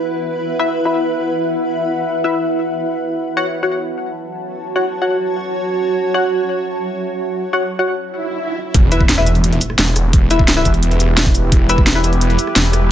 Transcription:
Already playing: ambient pad E4 B4 E5 F#5
0.59 synth stab E4 B4 E5
0.85 synth stab E4 B4 E5
2.24 synth stab E4 B4 E5
3.19 ambient pad F#4 C#5 A5
3.37 synth stab F#4 C#5 F#5
3.53 ambient pad C#5
3.63 synth stab F#4 C#5 F#5
4.76 synth stab F#4 C#5 F#5
5.02 synth stab F#4 C#5 F#5
5.97 ambient pad E5
6.14 synth stab F#4 C#5 F#5
7.53 synth stab F#4 C#5 F#5
7.79 synth stab F#4 C#5 F#5
8.05 swell
8.74 detuned saw bass E1, ambient pad E4 G4 B4, kick, closed hi-hat, impact
8.92 synth stab E4 B4 E5, closed hi-hat, shaker
9.01 kick
9.09 snare, closed hi-hat
9.18 synth stab E4 B4 E5, cross-stick
9.26 closed hi-hat, shaker
9.35 closed hi-hat
9.44 closed hi-hat
9.52 closed hi-hat
9.61 closed hi-hat, shaker
9.70 cross-stick
9.79 detuned saw bass E1, snare, closed hi-hat
9.87 shaker
9.96 cross-stick, closed hi-hat, shaker
10.13 kick, closed hi-hat
10.31 synth stab E4 B4 E5, closed hi-hat, shaker
10.39 kick
10.48 snare, closed hi-hat
10.57 synth stab E4 B4 E5, cross-stick
10.65 detuned saw bass E1, kick, closed hi-hat, shaker
10.74 closed hi-hat
10.83 closed hi-hat
10.91 closed hi-hat
11.00 closed hi-hat, shaker
11.17 snare, closed hi-hat
11.26 kick, shaker
11.35 closed hi-hat, shaker
11.52 detuned saw bass E1, kick, closed hi-hat
11.69 synth stab E4 B4 E5, closed hi-hat, shaker
11.78 kick
11.87 snare, closed hi-hat
11.95 synth stab E4 B4 E5, cross-stick
12.04 closed hi-hat, shaker
12.13 closed hi-hat
12.21 closed hi-hat
12.30 closed hi-hat
12.39 closed hi-hat, shaker
12.47 cross-stick
12.56 detuned saw bass E1, snare, closed hi-hat
12.65 shaker
12.73 cross-stick, closed hi-hat, shaker

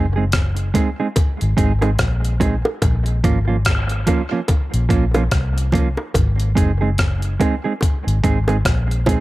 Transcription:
Already playing: fingered electric bass F#1
0.16 clean electric guitar G#3 C4 D#4 G#4
0.32 kick, cross-stick, closed hi-hat
0.57 closed hi-hat
0.74 clean electric guitar G#3 C4 D#4 G#4, kick, closed hi-hat, high bongo
1.00 clean electric guitar G#3 C4 D#4 G#4
1.16 kick, closed hi-hat, high bongo
1.41 fingered electric bass G#1, closed hi-hat
1.57 fingered electric bass G#1, clean electric guitar G#3 C4 D#4 G#4, kick, closed hi-hat
1.81 clean electric guitar G#3 C4 D#4 G#4, closed hi-hat, high bongo
1.99 fingered electric bass A#1, kick, cross-stick, closed hi-hat
2.25 closed hi-hat
2.40 clean electric guitar G#3 C4 D#4 G#4, kick, closed hi-hat, low bongo
2.65 high bongo
2.82 fingered electric bass A#1, kick, closed hi-hat, high bongo
3.06 closed hi-hat
3.24 fingered electric bass G#1, clean electric guitar F3 A#3 C#4 F4, kick, closed hi-hat
3.48 clean electric guitar F3 A#3 C#4 F4
3.65 kick, cross-stick, closed hi-hat
3.90 closed hi-hat
4.07 clean electric guitar F3 A#3 C#4 F4, kick, closed hi-hat, high bongo
4.31 clean electric guitar F3 A#3 C#4 F4
4.48 kick, closed hi-hat, high bongo
4.74 fingered electric bass A#1, closed hi-hat
4.89 fingered electric bass A#1, clean electric guitar F3 A#3 C#4 F4, kick, closed hi-hat
5.14 clean electric guitar F3 A#3 C#4 F4, closed hi-hat, high bongo
5.31 fingered electric bass C2, kick, cross-stick, closed hi-hat
5.58 closed hi-hat
5.72 clean electric guitar F3 A#3 C#4 F4, kick, closed hi-hat, low bongo
5.97 high bongo
6.14 fingered electric bass G#1, kick, closed hi-hat, high bongo
6.40 closed hi-hat
6.55 fingered electric bass F#1, clean electric guitar G#3 C4 D#4 G#4, kick, closed hi-hat
6.81 clean electric guitar G#3 C4 D#4 G#4
6.98 kick, cross-stick, closed hi-hat
7.22 closed hi-hat
7.40 clean electric guitar G#3 C4 D#4 G#4, kick, closed hi-hat, high bongo
7.64 clean electric guitar G#3 C4 D#4 G#4
7.81 kick, closed hi-hat, high bongo
8.07 fingered electric bass G#1, closed hi-hat
8.24 clean electric guitar G#3 C4 D#4 G#4, kick, closed hi-hat
8.48 clean electric guitar G#3 C4 D#4 G#4, closed hi-hat, high bongo
8.65 fingered electric bass A#1, kick, cross-stick, closed hi-hat
8.91 closed hi-hat
9.06 clean electric guitar G#3 C4 D#4 G#4, kick, closed hi-hat, low bongo

